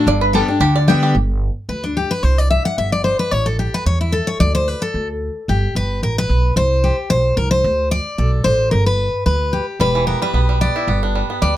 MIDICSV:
0, 0, Header, 1, 4, 480
1, 0, Start_track
1, 0, Key_signature, 1, "major"
1, 0, Tempo, 270270
1, 126, Time_signature, 4, 2, 24, 8
1, 20550, End_track
2, 0, Start_track
2, 0, Title_t, "Steel-string acoustic guitar"
2, 0, Program_c, 0, 25
2, 132, Note_on_c, 0, 43, 100
2, 591, Note_on_c, 0, 55, 97
2, 597, Note_on_c, 0, 59, 90
2, 612, Note_on_c, 0, 62, 93
2, 619, Note_on_c, 0, 67, 96
2, 835, Note_off_c, 0, 67, 0
2, 851, Note_off_c, 0, 55, 0
2, 854, Note_off_c, 0, 59, 0
2, 856, Note_on_c, 0, 67, 60
2, 862, Note_off_c, 0, 62, 0
2, 890, Note_on_c, 0, 62, 55
2, 1048, Note_off_c, 0, 43, 0
2, 1074, Note_off_c, 0, 67, 0
2, 1074, Note_on_c, 0, 50, 97
2, 1091, Note_off_c, 0, 62, 0
2, 1557, Note_on_c, 0, 55, 95
2, 1579, Note_on_c, 0, 59, 97
2, 1588, Note_on_c, 0, 62, 97
2, 1594, Note_on_c, 0, 67, 107
2, 2001, Note_off_c, 0, 50, 0
2, 2024, Note_off_c, 0, 55, 0
2, 2034, Note_off_c, 0, 59, 0
2, 2039, Note_off_c, 0, 62, 0
2, 2042, Note_off_c, 0, 67, 0
2, 3001, Note_on_c, 0, 71, 81
2, 3261, Note_on_c, 0, 62, 67
2, 3262, Note_off_c, 0, 71, 0
2, 3481, Note_off_c, 0, 62, 0
2, 3494, Note_on_c, 0, 67, 85
2, 3743, Note_on_c, 0, 71, 97
2, 3749, Note_off_c, 0, 67, 0
2, 3958, Note_off_c, 0, 71, 0
2, 3958, Note_on_c, 0, 72, 84
2, 4233, Note_off_c, 0, 72, 0
2, 4233, Note_on_c, 0, 74, 86
2, 4442, Note_off_c, 0, 74, 0
2, 4449, Note_on_c, 0, 76, 90
2, 4704, Note_off_c, 0, 76, 0
2, 4711, Note_on_c, 0, 78, 102
2, 4929, Note_off_c, 0, 78, 0
2, 4939, Note_on_c, 0, 76, 87
2, 5185, Note_off_c, 0, 76, 0
2, 5192, Note_on_c, 0, 74, 97
2, 5394, Note_off_c, 0, 74, 0
2, 5401, Note_on_c, 0, 72, 90
2, 5663, Note_off_c, 0, 72, 0
2, 5670, Note_on_c, 0, 71, 97
2, 5884, Note_off_c, 0, 71, 0
2, 5884, Note_on_c, 0, 73, 93
2, 6143, Note_on_c, 0, 69, 78
2, 6147, Note_off_c, 0, 73, 0
2, 6366, Note_off_c, 0, 69, 0
2, 6377, Note_on_c, 0, 67, 75
2, 6634, Note_off_c, 0, 67, 0
2, 6646, Note_on_c, 0, 71, 97
2, 6855, Note_off_c, 0, 71, 0
2, 6862, Note_on_c, 0, 73, 96
2, 7109, Note_off_c, 0, 73, 0
2, 7116, Note_on_c, 0, 64, 68
2, 7325, Note_on_c, 0, 69, 89
2, 7333, Note_off_c, 0, 64, 0
2, 7585, Note_on_c, 0, 73, 96
2, 7588, Note_off_c, 0, 69, 0
2, 7808, Note_off_c, 0, 73, 0
2, 7815, Note_on_c, 0, 74, 103
2, 8068, Note_off_c, 0, 74, 0
2, 8075, Note_on_c, 0, 72, 94
2, 8307, Note_off_c, 0, 72, 0
2, 8307, Note_on_c, 0, 71, 80
2, 8556, Note_on_c, 0, 69, 92
2, 8559, Note_off_c, 0, 71, 0
2, 9007, Note_off_c, 0, 69, 0
2, 9752, Note_on_c, 0, 67, 80
2, 10195, Note_off_c, 0, 67, 0
2, 10235, Note_on_c, 0, 71, 93
2, 10676, Note_off_c, 0, 71, 0
2, 10713, Note_on_c, 0, 70, 82
2, 10962, Note_off_c, 0, 70, 0
2, 10981, Note_on_c, 0, 71, 106
2, 11623, Note_off_c, 0, 71, 0
2, 11663, Note_on_c, 0, 72, 104
2, 12143, Note_on_c, 0, 67, 65
2, 12352, Note_off_c, 0, 72, 0
2, 12589, Note_off_c, 0, 67, 0
2, 12609, Note_on_c, 0, 72, 110
2, 13061, Note_off_c, 0, 72, 0
2, 13089, Note_on_c, 0, 70, 88
2, 13327, Note_off_c, 0, 70, 0
2, 13334, Note_on_c, 0, 72, 105
2, 13996, Note_off_c, 0, 72, 0
2, 14054, Note_on_c, 0, 74, 108
2, 14533, Note_on_c, 0, 69, 66
2, 14745, Note_off_c, 0, 74, 0
2, 14981, Note_off_c, 0, 69, 0
2, 14993, Note_on_c, 0, 72, 101
2, 15450, Note_off_c, 0, 72, 0
2, 15473, Note_on_c, 0, 70, 86
2, 15735, Note_off_c, 0, 70, 0
2, 15742, Note_on_c, 0, 71, 87
2, 16398, Note_off_c, 0, 71, 0
2, 16444, Note_on_c, 0, 71, 80
2, 16922, Note_on_c, 0, 67, 66
2, 17137, Note_off_c, 0, 71, 0
2, 17373, Note_off_c, 0, 67, 0
2, 17417, Note_on_c, 0, 71, 96
2, 17861, Note_off_c, 0, 71, 0
2, 17881, Note_on_c, 0, 70, 83
2, 18139, Note_off_c, 0, 70, 0
2, 18156, Note_on_c, 0, 71, 91
2, 18803, Note_off_c, 0, 71, 0
2, 18845, Note_on_c, 0, 74, 100
2, 19535, Note_off_c, 0, 74, 0
2, 20281, Note_on_c, 0, 74, 93
2, 20533, Note_off_c, 0, 74, 0
2, 20550, End_track
3, 0, Start_track
3, 0, Title_t, "Five-string banjo"
3, 0, Program_c, 1, 105
3, 0, Note_on_c, 1, 62, 61
3, 138, Note_on_c, 1, 74, 96
3, 371, Note_off_c, 1, 74, 0
3, 378, Note_on_c, 1, 71, 93
3, 610, Note_off_c, 1, 71, 0
3, 621, Note_on_c, 1, 69, 89
3, 860, Note_off_c, 1, 62, 0
3, 867, Note_on_c, 1, 62, 57
3, 1079, Note_on_c, 1, 67, 98
3, 1110, Note_off_c, 1, 69, 0
3, 1342, Note_on_c, 1, 74, 98
3, 1354, Note_off_c, 1, 67, 0
3, 1526, Note_off_c, 1, 62, 0
3, 1551, Note_off_c, 1, 74, 0
3, 1564, Note_on_c, 1, 79, 105
3, 1826, Note_on_c, 1, 67, 66
3, 2015, Note_off_c, 1, 79, 0
3, 2049, Note_off_c, 1, 67, 0
3, 17405, Note_on_c, 1, 55, 72
3, 17672, Note_on_c, 1, 52, 61
3, 17887, Note_on_c, 1, 59, 57
3, 18139, Note_off_c, 1, 55, 0
3, 18146, Note_on_c, 1, 55, 68
3, 18326, Note_off_c, 1, 52, 0
3, 18346, Note_off_c, 1, 59, 0
3, 18368, Note_on_c, 1, 59, 68
3, 18622, Note_off_c, 1, 55, 0
3, 18630, Note_on_c, 1, 55, 57
3, 18823, Note_off_c, 1, 59, 0
3, 18844, Note_on_c, 1, 59, 62
3, 19107, Note_on_c, 1, 64, 64
3, 19304, Note_off_c, 1, 59, 0
3, 19325, Note_on_c, 1, 59, 65
3, 19327, Note_off_c, 1, 64, 0
3, 19588, Note_on_c, 1, 62, 62
3, 19802, Note_off_c, 1, 55, 0
3, 19809, Note_on_c, 1, 55, 57
3, 20014, Note_off_c, 1, 59, 0
3, 20067, Note_on_c, 1, 59, 54
3, 20241, Note_off_c, 1, 62, 0
3, 20256, Note_off_c, 1, 55, 0
3, 20277, Note_on_c, 1, 55, 70
3, 20550, Note_off_c, 1, 55, 0
3, 20550, Note_off_c, 1, 59, 0
3, 20550, End_track
4, 0, Start_track
4, 0, Title_t, "Upright bass"
4, 0, Program_c, 2, 32
4, 118, Note_on_c, 2, 31, 106
4, 712, Note_off_c, 2, 31, 0
4, 1066, Note_on_c, 2, 38, 83
4, 1664, Note_off_c, 2, 38, 0
4, 2035, Note_on_c, 2, 31, 96
4, 2632, Note_off_c, 2, 31, 0
4, 2995, Note_on_c, 2, 38, 80
4, 3593, Note_off_c, 2, 38, 0
4, 3964, Note_on_c, 2, 36, 90
4, 4560, Note_off_c, 2, 36, 0
4, 4933, Note_on_c, 2, 31, 84
4, 5526, Note_off_c, 2, 31, 0
4, 5893, Note_on_c, 2, 33, 93
4, 6486, Note_off_c, 2, 33, 0
4, 6850, Note_on_c, 2, 40, 83
4, 7445, Note_off_c, 2, 40, 0
4, 7814, Note_on_c, 2, 38, 103
4, 8407, Note_off_c, 2, 38, 0
4, 8778, Note_on_c, 2, 38, 88
4, 9370, Note_off_c, 2, 38, 0
4, 9738, Note_on_c, 2, 31, 94
4, 10035, Note_off_c, 2, 31, 0
4, 10216, Note_on_c, 2, 31, 88
4, 10628, Note_off_c, 2, 31, 0
4, 10704, Note_on_c, 2, 33, 80
4, 11112, Note_off_c, 2, 33, 0
4, 11179, Note_on_c, 2, 35, 86
4, 11589, Note_off_c, 2, 35, 0
4, 11653, Note_on_c, 2, 36, 102
4, 12245, Note_off_c, 2, 36, 0
4, 12609, Note_on_c, 2, 35, 82
4, 13022, Note_off_c, 2, 35, 0
4, 13084, Note_on_c, 2, 36, 87
4, 13499, Note_off_c, 2, 36, 0
4, 13575, Note_on_c, 2, 38, 101
4, 14165, Note_off_c, 2, 38, 0
4, 14536, Note_on_c, 2, 35, 86
4, 14944, Note_off_c, 2, 35, 0
4, 15010, Note_on_c, 2, 33, 83
4, 15420, Note_off_c, 2, 33, 0
4, 15495, Note_on_c, 2, 31, 102
4, 16084, Note_off_c, 2, 31, 0
4, 16444, Note_on_c, 2, 38, 84
4, 17036, Note_off_c, 2, 38, 0
4, 17398, Note_on_c, 2, 28, 98
4, 17990, Note_off_c, 2, 28, 0
4, 18353, Note_on_c, 2, 35, 79
4, 18947, Note_off_c, 2, 35, 0
4, 19313, Note_on_c, 2, 31, 101
4, 19906, Note_off_c, 2, 31, 0
4, 20281, Note_on_c, 2, 38, 77
4, 20550, Note_off_c, 2, 38, 0
4, 20550, End_track
0, 0, End_of_file